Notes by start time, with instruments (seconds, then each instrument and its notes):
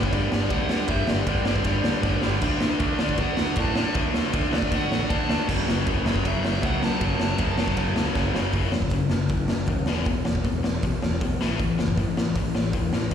Already playing: distorted electric guitar G2 D3 G3
0.03 lead electric guitar C#5, kick
0.13 picked electric bass G1, distorted electric guitar G2 D3 G3, lead electric guitar D5, kick, ride
0.32 picked electric bass G1, snare
0.50 picked electric bass D2, distorted electric guitar G2 D3 G3, lead electric guitar F#5, kick, ride
0.69 distorted electric guitar G2 D3 G3, snare
0.88 picked electric bass G1, distorted electric guitar G2 D3 G3, lead electric guitar E5, kick, ride
1.07 picked electric bass G1, lead electric guitar D5, snare
1.26 picked electric bass G1, distorted electric guitar G2 D3 G3, kick, ride
1.45 picked electric bass G1, distorted electric guitar G2 D3 G3, lead electric guitar D5, snare
1.56 kick
1.64 picked electric bass G1, distorted electric guitar G2 D3 G3, kick, ride
1.69 lead electric guitar D5
1.84 picked electric bass D2, snare
2.03 picked electric bass G1, distorted electric guitar G2 D3 G3, kick, snare
2.22 picked electric bass G1, distorted electric guitar G2 D3 G3, snare
2.42 picked electric bass D2, distorted electric guitar D3 A3 D4, kick, crash
2.61 picked electric bass D2, snare
2.80 picked electric bass D2, distorted electric guitar D3 A3 D4, kick, ride
2.99 picked electric bass D2, distorted electric guitar D3 A3 D4, lead electric guitar D5, snare
3.09 kick
3.18 picked electric bass D2, distorted electric guitar D3 A3 D4, lead electric guitar F#5, kick, ride
3.37 picked electric bass D2, snare
3.56 picked electric bass A2, distorted electric guitar D3 A3 D4, kick, ride
3.60 lead electric guitar A5
3.76 distorted electric guitar D3 A3 D4, snare
3.95 picked electric bass D2, distorted electric guitar D3 A3 D4, kick, ride
4.14 picked electric bass D2, snare
4.33 picked electric bass D2, distorted electric guitar D3 A3 D4, kick, ride
4.52 picked electric bass D2, distorted electric guitar D3 A3 D4, snare
4.56 lead electric guitar D5
4.62 kick
4.70 picked electric bass D2, distorted electric guitar D3 A3 D4, kick, ride
4.75 lead electric guitar F#5
4.91 picked electric bass A1, snare
5.09 picked electric bass D2, distorted electric guitar D3 A3 D4, lead electric guitar A5, kick, ride
5.29 picked electric bass D2, distorted electric guitar D3 A3 D4, snare
5.48 picked electric bass F#1, distorted electric guitar F#2 C#3 F#3, kick, crash
5.68 picked electric bass F#1, snare
5.87 picked electric bass F#1, distorted electric guitar F#2 C#3 F#3, kick, ride
6.06 picked electric bass F#1, distorted electric guitar F#2 C#3 F#3, lead electric guitar C#5, snare
6.16 kick
6.25 picked electric bass F#1, distorted electric guitar F#2 C#3 F#3, lead electric guitar E5, kick, ride
6.43 picked electric bass F#1, snare
6.62 picked electric bass C#2, distorted electric guitar F#2 C#3 F#3, lead electric guitar F#5, kick, ride
6.82 distorted electric guitar F#2 C#3 F#3, lead electric guitar A5, snare
7.01 picked electric bass F#1, distorted electric guitar F#2 C#3 F#3, kick, ride
7.20 picked electric bass F#1, snare
7.38 picked electric bass F#1, distorted electric guitar F#2 C#3 F#3, kick, ride
7.58 picked electric bass F#1, distorted electric guitar F#2 C#3 F#3, snare
7.68 kick
7.77 picked electric bass F#1, distorted electric guitar F#2 C#3 F#3, kick, ride
7.96 picked electric bass C#2, snare
8.15 picked electric bass F#1, distorted electric guitar F#2 C#3 F#3, kick, snare
8.34 picked electric bass F#1, distorted electric guitar F#2 C#3 F#3, snare
8.53 picked electric bass F#1, distorted electric guitar F#2 C#3 F#3, kick, open hi-hat
8.72 picked electric bass E1, distorted electric guitar F#2 C#3, snare
8.82 kick
8.90 picked electric bass F#1, distorted electric guitar F#2 C#3, kick, open hi-hat
9.10 picked electric bass F#1, distorted electric guitar F#2 C#3, snare
9.29 picked electric bass F#1, distorted electric guitar F#2 C#3, kick, open hi-hat
9.48 picked electric bass F#1, distorted electric guitar F#2 C#3, snare
9.67 picked electric bass D#2, distorted electric guitar F#2 C#3, kick, open hi-hat
9.86 picked electric bass E1, distorted electric guitar E2 B2 E3, snare
10.05 picked electric bass E1, distorted electric guitar E2 B2, kick, open hi-hat
10.25 picked electric bass E1, distorted electric guitar E2 B2, snare
10.35 kick
10.44 picked electric bass E1, distorted electric guitar E2 B2, kick, open hi-hat
10.63 picked electric bass E1, distorted electric guitar E2 B2, snare
10.83 picked electric bass B1, distorted electric guitar E2 B2, kick, open hi-hat
11.02 picked electric bass E1, distorted electric guitar E2 B2, snare
11.21 picked electric bass B1, distorted electric guitar E2 B2, kick, open hi-hat
11.41 picked electric bass A1, distorted electric guitar A2 E3 A3, snare
11.59 picked electric bass A1, distorted electric guitar A2 E3, kick, open hi-hat
11.78 picked electric bass F#1, distorted electric guitar A2 E3, snare
11.88 kick
11.97 picked electric bass A1, distorted electric guitar A2 E3, kick, open hi-hat
12.17 picked electric bass A1, distorted electric guitar A2 E3, snare
12.36 picked electric bass A1, distorted electric guitar A2 E3, kick, open hi-hat
12.55 picked electric bass A1, distorted electric guitar A2 E3, snare
12.73 picked electric bass E1, distorted electric guitar A2 E3, kick, open hi-hat
12.93 picked electric bass A1, distorted electric guitar A2 E3, snare
13.11 picked electric bass A1, kick, open hi-hat